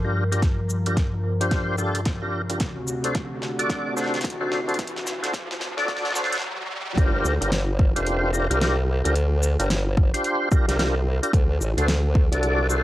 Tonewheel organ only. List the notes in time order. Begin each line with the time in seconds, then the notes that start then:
0.04 D4 F4 G4 A#4
0.32 D4 F4 G4 A#4
0.86 D4 F4 G4 A#4
1.41 D4 F4 G4 C5
1.78 D4 F4 G4 A4
2.22 D4 F4 G4 A#4
2.49 D4 F4 G4 A#4
3.04 D4 F#4 A4 C5
3.59 D4 F#4 A4 D5
3.96 D4 F#4 A4 C5
4.40 D4 F#4 A4 C5
4.68 D4 F#4 A4 C5
5.22 D4 F#4 A4 C5
5.77 D4 F#4 A4 D5
6.15 D4 F#4 A4 C5
6.97 D4 F4 G4 A#4
7.41 D4 F4 G4 A#4
7.96 D4 F4 G4 C5
8.33 D4 F4 G4 A#4
8.50 D4 F4 G4 A#4
8.60 D4 F4 G4 A#4
9.04 D4 F4 G4 A#4
9.59 D4 F4 G4 A#4
10.14 D4 F4 G4 C5
10.52 D4 F4 G4 A#4
10.69 D4 F4 G4 A#4
10.79 D4 F4 G4 A#4
11.23 D4 F4 G4 A#4
11.77 D4 F#4 A4 C5
12.32 D4 F#4 A4 D5
12.69 D4 F#4 A4 C5